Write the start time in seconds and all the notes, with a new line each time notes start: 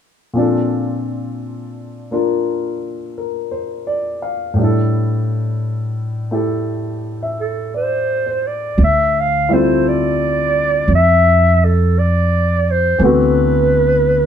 0.33 A#2 F3 C4
0.38 D4 A4
2.11 A#3 D4 F4 A#4
3.18 A#4
3.51 C5
3.87 D5
4.22 F5
4.54 A2 G3
4.59 D4 E4
4.64 A4
6.31 A3 E4 G4 A4
7.23 E5
7.40 A4
7.74 C5 D5
8.26 C5
8.47 D5
8.78 D2
8.84 E5
9.20 F5
9.49 G3 A3 C4 E4
9.53 F4 C5
9.89 D5
10.88 F2
10.95 E5
11.65 A4
11.99 D5
12.71 C5
12.98 D2 E3 A3 B3
13.03 C4 F#4 B4